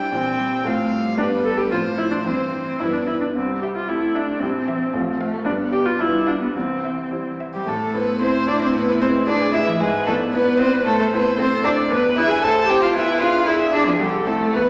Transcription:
Already playing: grand piano C2 G3 E4 C5, cello G3, violin G5
0.12 grand piano A#2 G3 E4 C5, cello E3, viola C4
0.38 cello G3
0.64 grand piano A2 A3 F4 C5, cello A3, violin F5
0.90 cello G3
1.18 grand piano G2 B3 D4 G4, viola D4, violin B4
1.44 viola A4
1.58 viola G4
1.71 grand piano A2 C4 F4, cello F3, viola F4, violin C5
1.98 viola E4
2.11 viola D4
2.24 grand piano G2 C4 E4 G4, cello E3, viola C4, violin C5
2.79 grand piano G2 B3 D4 G4, viola E4, violin B4
2.93 viola D4
3.06 viola E4
3.20 viola D4
3.34 grand piano C2, cello G3, viola C4
3.61 viola G4, violin E5
3.76 viola F4
3.88 cello A3, grand piano C4 E4 G4, viola E4
4.15 viola D4, violin E5
4.39 grand piano A#1 C4 E4 G4, cello G3, viola C4
4.65 cello E3, violin E5
4.93 grand piano A1 C4 F4 A4, cello F3
5.20 cello A3, violin F5
5.45 grand piano G2 G3 D4 B4, cello B3, viola D4
5.72 viola G4, violin D5
5.86 viola F4
5.99 grand piano G2 G3 F4 B4, cello G3, viola E4
6.27 viola D4, violin F5
6.41 viola B3
6.54 grand piano C2, cello E3, viola C4
6.84 violin E5
7.11 grand piano G3 E4 C5
7.40 violin E5
7.54 cello G3, violin G4
7.66 grand piano A2, cello A3, violin A4, viola A4
7.94 grand piano A3 E4 C5, cello B3, violin B4
8.19 grand piano A3 E4, cello C4, viola E4, violin C5
8.23 grand piano C5
8.47 grand piano A3 E4 C5, cello D4, violin D5
8.60 cello C4, violin C5
8.71 grand piano A2, cello B3, violin B4
8.87 cello B3, violin B4
8.99 grand piano G#3 E4 B4, cello C4, violin C5
9.27 grand piano G#3 E4 B4, cello D4, viola G#4, violin D5
9.52 grand piano G#3 E4 B4, cello E4, violin E5
9.66 cello E3, violin E4
9.80 grand piano G#2, cello G#3, violin G#4, viola B4
10.06 cello A3, grand piano B3 E4 D5, violin A4
10.32 grand piano B3 E4 D5, cello B3, viola B4, violin B4
10.58 grand piano B3 E4 D5, cello C4, violin C5
10.73 cello B3, violin B4
10.85 grand piano A2, cello A3, violin A4, viola C5
10.99 cello A3, violin A4
11.13 cello B3, grand piano C4 E4 C5, violin B4
11.38 cello C4, grand piano C4 E4 C5, viola A4, violin C5
11.64 grand piano C4 E4 C5, cello D4, violin D5
11.90 grand piano E2, cello B3, viola B4, violin B4
12.16 grand piano D4 E4 G#4, cello E4, violin E5
12.28 cello G#4, violin G#5
12.42 grand piano A1, cello A4, viola C5, violin A5
12.67 grand piano C4 E4 A4, cello G4, violin G5
12.81 cello F4, violin F5
12.93 grand piano B1, cello E4, viola B4, violin E5
13.19 grand piano D4 E4 G#4, cello F4, violin F5
13.45 grand piano D4 E4 G#4, cello E4, viola G#4, violin E5
13.71 cello D4, grand piano D4 E4 G#4, violin D5
13.86 cello F3, violin F4
13.99 grand piano C2, cello G3, violin G4, viola A4
14.26 cello A3, grand piano C4 E4 A4, violin A4
14.54 grand piano E2, cello B3, violin B4, viola B4

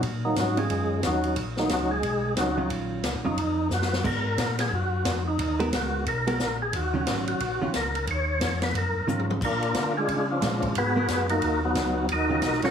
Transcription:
0.02 tonewheel organ A#2, kick, ride
0.25 tonewheel organ D#3 F#3 A#3 D#4
0.36 tonewheel organ G#2 C#4 D#4 F#4, kick, snare, hi-hat pedal, ride
0.40 tonewheel organ F#3
0.57 hollow-body jazz guitar D#3 F#3 C#4 F4, tonewheel organ G#3 G#4, ride
0.69 tonewheel organ F#2, kick, ride
1.03 tonewheel organ D#2 C#4 F#4, kick, snare, hi-hat pedal, ride
1.07 tonewheel organ F#3 D#4
1.23 ride
1.36 tonewheel organ A#1, kick, ride
1.57 tonewheel organ D#3 F#3 A#3 D#4, snare
1.69 tonewheel organ C#2 F#3 C#4 D#4 F#4, kick, snare, hi-hat pedal, ride
1.91 tonewheel organ G#3 G#4
2.03 tonewheel organ B1, kick, ride
2.36 tonewheel organ C#2 F#3 C#4 D#4 F#4, kick, snare, hi-hat pedal, ride
2.57 hollow-body jazz guitar D#3 F#3 C#4 F4
2.70 tonewheel organ A#1, kick, ride
3.03 tonewheel organ C#2, kick, snare, hi-hat pedal, ride
3.14 tonewheel organ A#1
3.25 tonewheel organ F#1 D#4, hollow-body jazz guitar D#3 F#3 C#4 F4
3.37 tonewheel organ F2, kick, ride
3.69 tonewheel organ F#2, snare, hi-hat pedal
3.74 tonewheel organ F#4
3.82 snare
3.93 snare
4.04 tonewheel organ G#2 A#4, hollow-body jazz guitar G#3 B3 F#4 A#4, kick, crash
4.38 tonewheel organ A#2, kick, snare, hi-hat pedal, ride
4.58 tonewheel organ G#4, snare, ride
4.71 tonewheel organ F#2 F#4, kick
5.05 tonewheel organ F2, kick, snare, hi-hat pedal, ride
5.28 tonewheel organ D#4
5.38 tonewheel organ D#2, kick, ride
5.59 hollow-body jazz guitar G#3 B3 F#4 A#4, ride
5.72 tonewheel organ C#2 F#4, kick, snare, hi-hat pedal, ride
6.06 tonewheel organ B1 A#4, kick, ride
6.27 hollow-body jazz guitar G#3 B3 F#4 A#4, ride
6.39 tonewheel organ A#1, kick, snare, hi-hat pedal
6.62 tonewheel organ G#4
6.73 tonewheel organ D#2 F#4, kick, ride
6.94 hollow-body jazz guitar D#3 F#3 C#4
7.06 tonewheel organ G#1, kick, snare, hi-hat pedal, ride
7.27 tonewheel organ G#1 F#4, ride
7.40 tonewheel organ A#1, kick, ride
7.60 tonewheel organ A#1, hollow-body jazz guitar D#3 F#3 C#4 F4
7.74 tonewheel organ C#2 A#4, kick, snare, hi-hat pedal, ride
7.95 ride
8.07 tonewheel organ D#2 C#5, kick, ride
8.40 tonewheel organ F2, kick, snare, hi-hat pedal, ride
8.62 tonewheel organ B4, snare, ride
8.74 tonewheel organ F#2 A#4, kick, ride
8.94 tonewheel organ F#2
9.06 tonewheel organ G#2, hollow-body jazz guitar D#3 F#3 C#4 F4, hi-hat pedal
9.19 high tom
9.30 high tom
9.41 tonewheel organ A#2 A#3, kick, crash
9.45 tonewheel organ D4 F4 A#4
9.62 ride
9.74 tonewheel organ D3, kick, snare, hi-hat pedal, ride
9.97 tonewheel organ G#3 D4 F4 G#4
10.08 tonewheel organ C#3, kick, ride
10.31 tonewheel organ F3 C#4 D4 F4
10.41 tonewheel organ A#2, hollow-body jazz guitar G#3, kick, snare, hi-hat pedal, ride
10.62 kick, ride
10.74 tonewheel organ G#2 B3 F#4 G#4 B4, kick, ride
10.96 hollow-body jazz guitar G#3 B3 F#4 A#4
11.08 tonewheel organ F#2, kick, snare, hi-hat pedal, ride
11.29 tonewheel organ A#3 D#4 F#4 A#4, ride
11.41 tonewheel organ D#2, kick, ride
11.64 tonewheel organ F#3 B3 D#4 F#4
11.75 tonewheel organ C#2, kick, snare, hi-hat pedal, ride
12.08 tonewheel organ D#2, kick, ride
12.12 tonewheel organ D#4 F#4 A#4 D#5
12.29 hollow-body jazz guitar D#3 F#3 C#4 F4
12.42 tonewheel organ B1, kick, snare, hi-hat pedal, ride
12.53 snare
12.62 tonewheel organ B1 C#4 F#4 A#4 C#5, hollow-body jazz guitar D#3 F#3 C#4 F4, snare, ride

